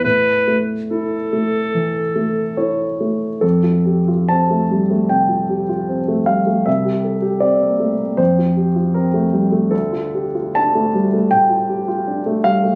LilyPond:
<<
  \new Staff \with { instrumentName = "Clarinet" } { \time 4/4 \key a \major \tempo 4 = 77 b'8 r8 a'2~ a'8 r8 | \key f \major r1 | r1 | r1 | }
  \new Staff \with { instrumentName = "Grand piano" } { \time 4/4 \key a \major r2. cis''4 | \key f \major a'4 a''4 g''4. f''8 | e''4 d''4 c''4 bes'4 | a'4 a''4 g''4. f''8 | }
  \new Staff \with { instrumentName = "Grand piano" } { \time 4/4 \key a \major a,8 a8 e'8 a8 e8 a8 e'8 a8 | \key f \major f,16 f'16 g'16 f'16 c'16 a16 g16 a16 c16 f'16 g'16 f'16 c'16 a16 g16 a16 | c,16 g'16 a'16 g'16 c'16 bes16 a16 bes16 f,16 f'16 g'16 f'16 c'16 a16 g16 a16 | d,16 f'16 g'16 f'16 d'16 a16 g16 a16 a,16 f'16 g'16 f'16 d'16 a16 g16 a16 | }
>>